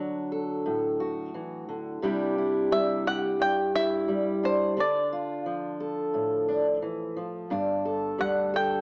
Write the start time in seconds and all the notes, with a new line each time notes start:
Already playing: D3 F#3 D4 F#4 D5
0.32 A4
0.66 A2
1.00 F#4
1.34 E3
1.69 D3
2.02 C3 G3 D4 E4 G4
2.38 E4
2.71 G3 E5
3.07 G4 F#5
3.39 G2 G5
3.75 E4 E5
4.08 G3
4.43 D4 C5
4.77 D3 D4 D5
5.13 F4
5.46 F3
5.80 A4
6.14 A2
6.48 D4
6.82 E3
7.17 F3
7.50 G1 G2 D4
7.85 A4
8.18 D2 G3 F#5
8.54 A4 G5